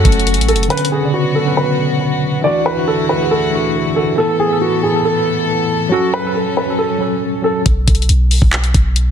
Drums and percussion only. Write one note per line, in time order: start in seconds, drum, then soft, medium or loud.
0.05 kick loud
0.05 closed hi-hat medium
0.12 closed hi-hat medium
0.20 closed hi-hat soft
0.27 closed hi-hat medium
0.34 closed hi-hat medium
0.41 closed hi-hat medium
0.48 closed hi-hat soft
0.56 closed hi-hat medium
0.63 closed hi-hat medium
0.70 closed hi-hat medium
0.77 closed hi-hat medium
0.85 closed hi-hat medium
7.66 kick loud
7.66 closed hi-hat medium
7.88 kick medium
7.88 closed hi-hat medium
7.95 closed hi-hat medium
8.02 closed hi-hat soft
8.09 closed hi-hat medium
8.31 open hi-hat medium
8.42 kick medium
8.53 clap loud
8.53 closed hi-hat medium
8.64 closed hi-hat medium
8.74 kick loud
8.74 closed hi-hat medium
8.96 closed hi-hat medium